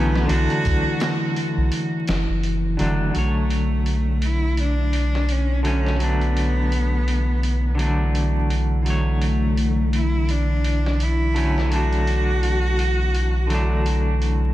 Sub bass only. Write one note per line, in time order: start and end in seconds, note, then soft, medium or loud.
0.00 0.27 B1 medium
0.29 0.47 B1 loud
0.65 0.83 B1 medium
1.57 1.70 B1 medium
2.08 2.26 F#1 medium
2.28 2.76 F#1 medium
2.79 3.11 F#1 medium
3.15 14.54 B1 medium